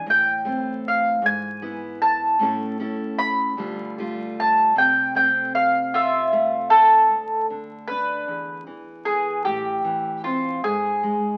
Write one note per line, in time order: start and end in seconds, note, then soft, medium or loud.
0.00 2.39 E3 soft
0.06 1.23 A2 medium
0.06 0.88 G5 medium
0.45 1.19 A3 soft
0.45 1.19 C4 soft
0.88 1.25 F5 medium
1.22 2.35 G#2 medium
1.22 2.01 G#5 medium
1.62 2.36 B3 soft
1.62 2.36 E4 medium
2.02 2.76 A5 medium
2.39 3.57 A2 medium
2.39 3.57 A3 soft
2.39 2.78 C#4 medium
2.39 2.80 E4 medium
2.39 2.81 A4 medium
2.80 3.53 C#4 soft
2.80 3.54 E4 soft
2.80 3.59 A4 medium
3.19 3.93 B5 medium
3.57 4.75 D2 medium
3.57 4.75 D3 soft
3.57 3.97 G3 soft
3.57 3.99 A3 soft
3.57 3.98 F4 medium
3.98 5.15 G3 soft
3.98 5.14 A3 soft
3.98 4.72 F4 soft
4.40 4.75 A5 medium
4.76 7.06 C3 medium
4.76 5.15 G5 medium
5.15 6.31 A3 soft
5.15 7.06 C4 soft
5.15 5.55 G5 medium
5.55 5.95 F5 medium
5.94 6.70 F4 medium
5.94 6.78 E5 medium
6.33 7.06 A3 soft
6.70 7.45 A4 medium
7.10 8.28 D2 medium
7.50 8.66 D3 soft
7.88 8.24 D4 soft
7.88 8.63 B4 medium
8.28 9.41 E2 medium
8.67 9.84 E3 soft
9.05 9.41 B3 soft
9.05 9.44 G#4 medium
9.45 10.64 A2 medium
9.45 10.24 G4 medium
9.84 10.58 E3 soft
10.24 10.59 C4 soft
10.24 10.61 F4 medium
10.64 11.37 G#2 medium
10.64 11.37 G#4 medium
11.03 11.37 G#3 soft